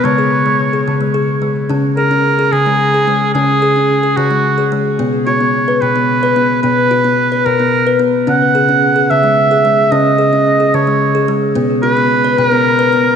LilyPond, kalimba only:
<<
  \new Staff \with { instrumentName = "Kalimba" } { \time 6/8 \key cis \dorian \tempo 4. = 73 gis16 gis'8 gis8 gis'8 gis16 gis'8 gis8 | cis'8 gis'16 cis'8 gis'8 gis8 gis'16 gis8 | cis'8 gis'16 cis'8 gis'8 gis8 gis'16 gis8 | b8 fis'16 b8 b'8 b8 b'16 b8 |
b8 fis'16 b8 b'8 b8 b'16 b8 | cis'8 gis'16 cis'8 gis'8 gis8 gis'16 gis8 | cis'8 gis'16 cis'8 gis'8 gis8 gis'16 gis8 | b8 fis'16 b8 b'8 b8 b'16 b8 | }
  \new Staff \with { instrumentName = "Kalimba" } { \clef bass \time 6/8 \key cis \dorian cis4. cis4. | cis4. cis4. | cis4. cis4. | b,4. b,4. |
b,4. b,4. | cis4. cis4. | cis4. cis4. | b,4. b,4. | }
>>